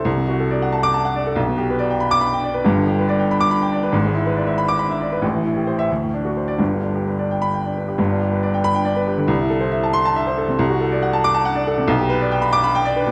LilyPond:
\new Staff \with { instrumentName = "Grand piano" } { \time 6/8 \key g \major \tempo 4. = 92 << { r4. r16 d'''8 r8. | r4. r16 d'''8 r8. | r4. r16 d'''8 r8. | r4. r16 d'''8 r8. |
r4 r16 e''16 r4 r16 d''16 | r4. r16 b''8 r8. | r4. b''8 r4 | r4. c'''8 r4 |
r4. d'''8 r4 | r4. d'''8 r4 | } \\ { c,16 c16 fis'16 a'16 d''16 fis''16 a''8 a''16 fis''16 d''16 a'16 | b,,16 b,16 g'16 b'16 d''16 g''16 b''8 b''16 g''16 d''16 b'16 | <g,, g,>16 d16 g'16 b'16 d''16 g''16 b''8 b''16 g''16 d''16 b'16 | <gis,, gis,>16 gis16 e'16 b'16 d''16 e''16 b''8 b''16 e''16 d''16 b'16 |
<a,, a,>16 e16 e'16 g'16 c''8 d,16 a,16 d'16 fis'16 c''8 | <g,, g,>16 d16 d'16 g'16 b'16 d''16 g''8 g''16 d''16 b'16 g'16 | <g,, g,>16 d'16 g'16 b'16 d''16 g''8 g''16 d''16 b'16 g'16 d16 | c,16 e'16 a'16 c''16 e''16 a''8 a''16 e''16 c''16 a'16 c16 |
c,16 fis'16 a'16 d''16 fis''16 a''8 a''16 fis''16 d''16 a'16 c16 | b,,16 g'16 b'16 d''16 g''16 b''8 b''16 g''16 d''16 b'16 b,16 | } >> }